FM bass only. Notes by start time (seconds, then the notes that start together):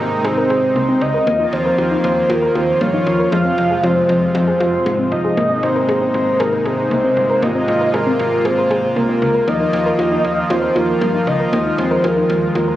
0.00 G#1
0.24 G#1
0.50 G#1
0.76 C2
1.01 C#2
1.27 D#2
1.53 D#2
1.78 D#2
2.04 D#2
2.30 D#2
2.55 D#2
2.81 G2
3.07 D#2
3.32 F2
3.58 F2
3.83 F2
4.09 F2
4.35 F2
4.60 F2
4.86 G#2
5.12 G1
5.37 G#1
5.63 G#1
5.89 G#1
6.14 G#1
6.40 G#1
6.66 G#1
6.91 C2
7.17 G1
7.42 G#1
7.68 G#1
7.94 G#1
8.19 G#1
8.45 G#1
8.71 G#1
8.96 C2
9.22 C#2
9.48 D#2
9.73 D#2
9.99 D#2
10.24 D#2
10.50 D#2
10.76 D#2
11.01 G2
11.27 C#2
11.53 D#2
11.78 D#2
12.04 D#2
12.30 D#2
12.55 D#2